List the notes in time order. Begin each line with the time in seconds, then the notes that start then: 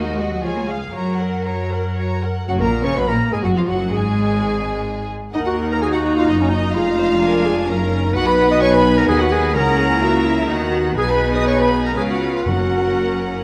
Already playing: D#2 D#4 F#4 A#4 D#5
0.05 G#3
0.18 F#4 D#5 F#5
0.31 F#3
0.41 C#2 F3 F4 G#4 C#5 G#5
0.56 A#3
0.67 G#3 G#4 F5
0.92 F#2 F#3 F#4 A#4 C#5 A#5
1.19 A#4 F#5
1.46 F#4 C#5 A#5
1.72 A#4 F#5
1.98 F#4 C#5 A#5
2.23 A#4 F#5
2.48 F#1 F#2 F#3 F#4 F#5
2.58 A#1 A#2 A#3 A#4 A#5
2.83 C#3 C#4 C#5 C#6
2.95 B1 B2 B3 B4 B5
3.07 A#1 A#2 A#3 A#4 A#5
3.31 G#2 G#3 G#4 G#5
3.43 F#1 F#2 F#3 F#4 F#5
3.55 F2 F3 F4 F5
3.67 F#1 F#2 F#3 F#4 F#5
3.91 G#1 G#2 G#3 G#4 G#5
5.33 D#2 A#3 D#4 A#4 D#5 F#5
5.46 F#4 F#5
5.70 A#4 A#5
5.81 F#4 G#4 G#5 A#5
5.93 F#4 F#5
6.17 F4 F5
6.28 F#1 F#2 D#4 D#5
6.39 C#4 C#5
6.51 D#4 D#5
6.74 F1 F2 G#3 D4 F4 G#4 F5
6.98 C5
7.20 D4 A#4 G#5
7.46 G#4
7.68 F#1 F#2 F#3 C#4 D#4 A#4 A#5
8.15 B1 B2 B3 F#4 B4 F#5
8.26 B4 B5
8.50 D#5 D#6
8.62 C#5 G#5 C#6
8.72 B4 B5
8.95 A#4 A#5
9.07 D#2 D#3 B3 G#4 B4 F#5 G#5
9.19 F#4 F#5
9.31 G#4 G#5
9.55 C#2 C#3 A#3 C#4 E4 A#4 F#5 A#5
9.77 G#4
10.01 F#4 A#4 E5
10.25 E4
10.49 D#2 D#3 B3 D#4 F#4 F#5
10.96 B1 B2 D#4 G#4 B4 G#5
11.09 B4 B5
11.35 D#5 D#6
11.47 C#5 C#6
11.59 B4 B5
11.84 A#4 A#5
11.95 C#2 C#3 C#4 F4 G#4 B4 F5 G#5
12.08 F#4 F#5
12.34 F4 F5
12.45 F#1 F#2 A#3 C#4 F#4 A#4 F#5